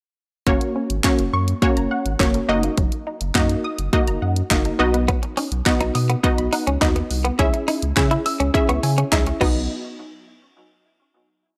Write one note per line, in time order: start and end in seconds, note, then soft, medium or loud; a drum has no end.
0.47 0.57 F#1 loud
0.47 0.56 F#3 medium
0.47 0.90 A#3 loud
0.47 0.90 C#4 medium
0.47 0.90 F#4 medium
0.47 0.90 C#5 loud
0.47 kick loud
0.47 closed hi-hat medium
0.61 closed hi-hat medium
0.76 0.85 C#4 medium
0.90 1.00 G#1 medium
0.90 closed hi-hat medium
1.04 1.48 A#3 medium
1.04 1.48 C#4 medium
1.04 1.48 F#4 medium
1.04 1.48 C#5 loud
1.04 1.14 F#5 medium
1.04 kick loud
1.04 snare medium
1.04 clap loud
1.04 closed hi-hat medium
1.19 1.29 F#1 loud
1.19 closed hi-hat medium
1.33 1.54 F#2 loud
1.33 1.43 C#6 loud
1.48 closed hi-hat medium
1.62 2.05 A#3 loud
1.62 2.05 C#4 medium
1.62 2.05 F#4 medium
1.62 2.05 C#5 loud
1.62 kick loud
1.62 closed hi-hat medium
1.77 1.87 F#1 medium
1.77 1.86 A#5 loud
1.77 closed hi-hat medium
1.91 2.00 F#5 medium
2.05 2.16 G#1 medium
2.05 closed hi-hat medium
2.20 2.40 F#1 loud
2.20 2.47 A#3 medium
2.20 2.49 C#4 medium
2.20 2.29 C#4 medium
2.20 2.48 F#4 medium
2.20 2.49 C#5 medium
2.20 kick loud
2.20 snare medium
2.20 clap loud
2.20 closed hi-hat medium
2.34 2.44 A#3 medium
2.34 closed hi-hat medium
2.49 2.69 F#1 loud
2.49 3.18 A#3 medium
2.49 3.18 D#4 medium
2.49 3.18 F#4 medium
2.49 3.18 D#5 loud
2.63 2.73 A#3 medium
2.63 closed hi-hat medium
2.77 2.88 F#1 loud
2.77 2.87 F#3 medium
2.77 kick loud
2.77 closed hi-hat medium
2.92 closed hi-hat medium
3.07 3.16 D#4 medium
3.21 3.31 F#1 medium
3.21 closed hi-hat medium
3.35 3.56 F#2 medium
3.35 3.78 A#3 medium
3.35 3.78 D#4 medium
3.35 3.78 F#4 medium
3.35 3.79 D#5 loud
3.35 3.45 F#5 medium
3.35 kick loud
3.35 snare medium
3.35 clap loud
3.35 closed hi-hat medium
3.49 closed hi-hat medium
3.64 3.74 D#6 loud
3.78 3.89 F#1 medium
3.78 closed hi-hat medium
3.93 4.36 A#3 loud
3.93 4.36 D#4 medium
3.93 4.36 F#4 medium
3.93 4.36 D#5 loud
3.93 kick loud
3.93 closed hi-hat medium
4.07 4.18 F#1 loud
4.07 4.17 A#5 loud
4.07 closed hi-hat medium
4.22 4.43 F#2 loud
4.22 4.31 F#5 medium
4.36 closed hi-hat medium
4.50 4.71 F#1 medium
4.50 4.79 A#3 medium
4.50 4.78 D#4 medium
4.50 4.60 D#4 medium
4.50 4.78 F#4 medium
4.50 4.78 D#5 medium
4.50 kick loud
4.50 snare medium
4.50 clap loud
4.50 closed hi-hat medium
4.65 4.75 A#3 medium
4.65 closed hi-hat medium
4.79 5.10 B1 loud
4.79 5.48 B3 medium
4.79 5.49 D#4 medium
4.79 5.49 F#4 medium
4.79 5.49 D#5 loud
4.94 5.03 B3 medium
4.94 closed hi-hat medium
5.08 5.18 F#3 medium
5.08 5.18 B3 medium
5.08 kick loud
5.08 closed hi-hat medium
5.23 muted clean electric guitar stroke soft
5.23 closed hi-hat medium
5.37 5.47 C#4 medium
5.37 5.47 D#4 medium
5.37 open hi-hat medium
5.52 5.62 B1 medium
5.52 closed hi-hat medium
5.66 6.09 B3 loud
5.66 6.09 D#4 medium
5.66 6.09 F#4 medium
5.66 6.09 D#5 loud
5.66 5.75 F#5 medium
5.66 kick loud
5.66 snare medium
5.66 clap loud
5.66 closed hi-hat medium
5.80 5.91 B1 loud
5.80 5.90 D#4 medium
5.80 closed hi-hat medium
5.95 6.16 B2 loud
5.95 6.04 D#6 loud
5.95 muted clean electric guitar stroke soft
5.95 open hi-hat medium
6.10 6.19 B3 medium
6.10 closed hi-hat medium
6.23 6.67 B3 loud
6.23 6.67 D#4 medium
6.23 6.67 F#4 medium
6.23 6.67 D#5 loud
6.23 muted clean electric guitar stroke soft
6.23 kick loud
6.23 closed hi-hat medium
6.38 6.49 B1 medium
6.38 6.47 B5 loud
6.38 closed hi-hat medium
6.53 6.62 D#4 medium
6.53 6.62 F#5 medium
6.53 open hi-hat medium
6.67 6.77 C#2 medium
6.67 6.77 C#4 medium
6.67 closed hi-hat medium
6.81 7.02 D#2 loud
6.81 7.24 B3 medium
6.81 7.24 D#4 medium
6.81 6.91 D#4 medium
6.81 7.25 F#4 medium
6.81 7.25 D#5 medium
6.81 kick loud
6.81 snare medium
6.81 clap loud
6.81 closed hi-hat medium
6.96 7.05 B3 medium
6.96 muted clean electric guitar stroke soft
6.96 closed hi-hat medium
7.11 7.31 C2 medium
7.11 open hi-hat medium
7.25 7.34 B3 medium
7.25 closed hi-hat medium
7.39 7.49 C#2 loud
7.39 7.48 G#3 medium
7.39 7.82 C#4 medium
7.39 7.49 C#4 medium
7.39 7.82 E4 medium
7.39 7.82 G#4 medium
7.39 7.82 E5 loud
7.39 kick loud
7.39 closed hi-hat medium
7.54 muted clean electric guitar stroke soft
7.54 closed hi-hat medium
7.68 7.77 D#4 medium
7.68 7.77 E4 medium
7.68 open hi-hat medium
7.82 7.93 C#2 loud
7.82 closed hi-hat medium
7.96 8.17 C#3 loud
7.96 8.40 C#4 medium
7.96 8.40 E4 medium
7.96 8.40 G#4 medium
7.96 8.40 E5 loud
7.96 8.06 G#5 medium
7.96 kick loud
7.96 snare medium
7.96 clap loud
7.96 closed hi-hat medium
8.11 8.21 E4 medium
8.11 closed hi-hat medium
8.26 8.35 E6 loud
8.26 muted clean electric guitar stroke soft
8.26 open hi-hat medium
8.40 8.50 C#2 medium
8.40 8.49 C#4 medium
8.40 closed hi-hat medium
8.54 8.97 C#4 loud
8.54 8.97 E4 medium
8.54 8.98 G#4 medium
8.54 8.98 E5 loud
8.54 kick loud
8.54 closed hi-hat medium
8.69 8.79 C#2 loud
8.69 8.78 B3 medium
8.69 8.78 C#6 loud
8.69 closed hi-hat medium
8.83 9.04 C#3 loud
8.83 8.93 G#5 medium
8.83 muted clean electric guitar stroke soft
8.83 open hi-hat medium
8.98 9.07 C#4 medium
8.98 closed hi-hat medium
9.12 9.33 C#2 loud
9.12 9.41 C#4 medium
9.12 9.22 D#4 medium
9.12 9.41 E4 medium
9.12 9.21 E4 medium
9.12 9.41 G#4 medium
9.12 9.41 E5 medium
9.12 kick loud
9.12 snare medium
9.12 clap loud
9.12 closed hi-hat medium
9.26 9.36 C#4 medium
9.26 muted clean electric guitar stroke soft
9.26 closed hi-hat medium
9.41 9.68 B1 loud
9.41 9.68 F#3 medium
9.41 9.68 B3 medium
9.41 9.58 B3 medium
9.41 9.68 B3 medium
9.41 9.68 D#4 medium
9.41 9.68 F#4 medium
9.41 9.68 F#4 loud
9.41 9.68 D#5 loud
9.41 kick loud
9.41 crash medium